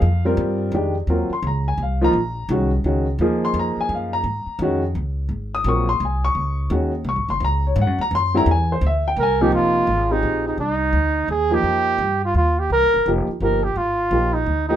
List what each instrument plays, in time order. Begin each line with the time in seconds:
Already playing: upright piano F5
0.02 upright bass F2
0.25 upright piano G3 C4 F4 A#4
0.37 upright bass G2
0.72 upright bass F2, upright piano D#3 G#3 D4 G4
1.07 upright bass D#2, upright piano F#3 C4 F4 A#4
1.30 upright piano C6, muted upright bass stroke
1.43 upright bass C#2
1.47 upright piano A#5
1.68 upright piano G#5
1.78 upright bass C2
1.83 upright piano F5
2.01 upright piano F3 A#3 D#4 F4 A#5
2.13 upright bass A#1
2.49 upright bass C2, upright piano D#3 G#3 C#4 F#4
2.84 upright bass C#2, upright piano D#3 G#3 C#4 F#4
3.19 upright bass D#2, upright piano F3 A#3 D#4 G#4
3.45 upright piano C6
3.54 upright bass F2
3.59 upright piano A#5
3.77 upright piano G#5, muted upright bass stroke
3.89 upright bass F#2
3.95 upright piano F5
4.13 upright piano A#5
4.24 upright bass G#2
4.47 muted upright bass stroke
4.59 upright bass F2, upright piano D#3 G#3 C#4
4.63 upright piano F#4
4.95 upright bass C#2
5.29 upright bass G#1
5.55 upright piano D#6
5.64 upright bass A#1, upright piano F#3 C4 F4 A#4
5.69 upright piano C#6
5.89 upright piano C6
6.00 upright bass C2
6.05 upright piano G#5
6.25 upright piano C#6
6.35 upright bass C#2
6.70 upright bass D#2, upright piano D#3 G#3 C#4 F#4
7.04 upright bass C2
7.09 upright piano C#6
7.16 upright bass G#1
7.29 upright bass F#1, upright piano C6
7.40 upright bass C#2
7.45 upright piano A#5
7.67 upright piano C#5
7.76 upright bass G#2
7.81 upright piano F#5
7.87 upright bass F#2
7.99 upright bass D#2, upright piano A#5
8.11 upright bass F#2
8.15 upright piano C6
8.34 upright piano D3 G3 C4 E4 A#5
8.46 upright bass E2
8.51 upright piano G#5
8.72 upright piano C5
8.81 upright bass D2
8.87 upright piano E5
9.08 upright piano G5
9.16 upright bass C2, trumpet A#4
9.23 upright piano G#5
9.41 upright piano C3 F3 A#3 D#4, trumpet G4
9.52 upright bass F1, trumpet F4
9.87 upright bass G#1
10.10 upright piano C4 F4 G4 G#4, trumpet D#4
10.23 upright bass A#1
10.48 trumpet D#4
10.58 upright bass C2, trumpet D#4
10.93 upright bass D2
11.28 upright bass D#2, trumpet G#4
11.51 upright piano F3 A#3 D#4 G4, trumpet G4
11.63 upright bass F2
11.98 upright bass G2
12.25 trumpet F4
12.34 upright bass D#2, trumpet F4
12.59 trumpet G4
12.70 upright bass C2, trumpet A#4
12.82 upright bass G#1
12.94 upright bass F1
13.06 upright bass F1, upright piano F3 A#3 D#4 G4
13.28 muted upright bass stroke
13.40 upright bass G1, upright piano F3 A#3 D#4 G4, trumpet A#4
13.64 trumpet G4
13.76 upright bass G#1, trumpet F4
14.11 upright bass A#1, upright piano F3 A#3 D#4 G4
14.33 trumpet D#4
14.46 upright bass D2
14.69 upright piano F3 A#3 D#4 G4, trumpet D#4